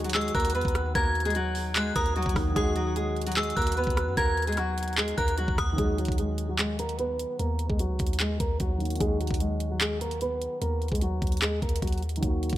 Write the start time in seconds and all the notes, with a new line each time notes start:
Already playing: D#2 D#3 F#3 F#4
0.04 F#3 F#4, closed hi-hat
0.10 closed hi-hat
0.14 G#3 G#4 E6, clap
0.21 closed hi-hat
0.28 closed hi-hat
0.35 D#2 A#3 A#4 F#6, kick, closed hi-hat
0.40 closed hi-hat
0.45 closed hi-hat
0.50 closed hi-hat
0.55 E2 B3 B4, closed hi-hat
0.61 D#2, kick, closed hi-hat
0.68 closed hi-hat
0.75 cross-stick, closed hi-hat
0.95 D#2 A#3 A#4 G#6, kick, closed hi-hat
1.15 closed hi-hat
1.20 closed hi-hat
1.25 G#3 G#4, closed hi-hat
1.30 closed hi-hat
1.35 F#3 F#4, closed hi-hat
1.55 open hi-hat
1.75 G#3 G#4 F#6, clap, closed hi-hat
1.96 D#2 A#3 A#4 D#6, kick, closed hi-hat
2.06 closed hi-hat
2.16 F#3 F#4, closed hi-hat
2.22 D#2, kick, closed hi-hat
2.29 closed hi-hat
2.33 D#2 D#3 F#3 A#3, kick, cross-stick, open hi-hat
2.39 F#4
2.51 D#3 F#3
2.56 D#2 D#3 F#3 G#3 F#4 G#4 D#6, kick, closed hi-hat
2.61 F#4
2.76 F#3 F#4, closed hi-hat
2.96 G#3 G#4, closed hi-hat
3.17 closed hi-hat
3.21 closed hi-hat
3.27 F#3 F#4, closed hi-hat
3.32 closed hi-hat
3.37 G#3 G#4 E6, clap, closed hi-hat
3.43 closed hi-hat
3.50 closed hi-hat
3.56 D#2 A#3 A#4 F#6, kick, closed hi-hat
3.62 closed hi-hat
3.67 closed hi-hat
3.72 closed hi-hat
3.77 B3 B4, closed hi-hat
3.84 D#2, kick, closed hi-hat
3.90 closed hi-hat
3.97 cross-stick, closed hi-hat
4.07 F#2
4.17 D#2 A#3 A#4 G#6, kick, closed hi-hat
4.37 closed hi-hat
4.42 closed hi-hat
4.47 G#3 G#4, closed hi-hat
4.52 closed hi-hat
4.57 F#3 F#4, cross-stick, closed hi-hat
4.78 closed hi-hat
4.83 closed hi-hat
4.88 closed hi-hat
4.93 closed hi-hat
4.98 G#3 G#4, clap, closed hi-hat
5.08 closed hi-hat
5.18 D#2 A#3 A#4 F#6, kick, closed hi-hat
5.28 closed hi-hat
5.38 F#3 F#4, closed hi-hat
5.48 D#2, kick
5.58 D#2 D#6, kick, cross-stick, closed hi-hat
5.73 D#3 F#3
5.78 D#2 G#3 G#4, kick, closed hi-hat
5.83 F#4
5.98 F#3 F#4, closed hi-hat
6.05 D#2, kick, closed hi-hat
6.12 closed hi-hat
6.18 G#3 G#4, closed hi-hat
6.38 closed hi-hat
6.49 F#3 F#4
6.59 G#3 G#4, clap, closed hi-hat
6.79 A#3 A#4, closed hi-hat
6.89 closed hi-hat
6.99 B3 B4, closed hi-hat
7.19 closed hi-hat
7.39 D#2 A#3 A#4, closed hi-hat
7.59 closed hi-hat
7.69 D#2 G#3 G#4, kick
7.79 F#3 F#4, closed hi-hat
7.90 C#2
7.99 D#2, kick, closed hi-hat, open hi-hat
8.07 closed hi-hat
8.13 closed hi-hat
8.20 G#3 G#4, clap, closed hi-hat
8.40 D#2 A#3 A#4, kick, closed hi-hat
8.60 D#2 F#3 F#4, kick, closed hi-hat
8.78 D#3 F#3 A#3, closed hi-hat
8.83 F#4, closed hi-hat
8.90 closed hi-hat
8.95 D#3 F#3, closed hi-hat
9.00 D#2 G#3 G#4, kick, closed hi-hat
9.06 F#4
9.20 F#3 F#4, closed hi-hat
9.27 D#2, kick, closed hi-hat
9.34 closed hi-hat
9.40 G#3 G#4, closed hi-hat
9.60 closed hi-hat
9.71 F#3 F#4
9.81 G#3 G#4, clap, closed hi-hat
10.01 A#3 A#4, closed hi-hat
10.11 closed hi-hat
10.21 B3 B4, closed hi-hat
10.42 closed hi-hat
10.62 D#2 A#3 A#4, closed hi-hat
10.82 closed hi-hat
10.88 D#2 G#4, kick, closed hi-hat
10.93 G#3, closed hi-hat
11.01 F#3 F#4, closed hi-hat
11.22 D#2, kick, closed hi-hat
11.27 closed hi-hat
11.32 closed hi-hat
11.37 closed hi-hat
11.42 G#3 G#4, clap, closed hi-hat
11.62 D#2 A#3 A#4, kick, closed hi-hat
11.69 closed hi-hat
11.76 closed hi-hat
11.82 D#2 F#3 F#4, kick, closed hi-hat
11.87 closed hi-hat
11.92 closed hi-hat
11.98 closed hi-hat
12.02 closed hi-hat
12.09 closed hi-hat
12.16 D#3, closed hi-hat
12.21 D#2 F#3 A#3, kick, closed hi-hat
12.28 F#4
12.43 closed hi-hat
12.50 D#2, kick, closed hi-hat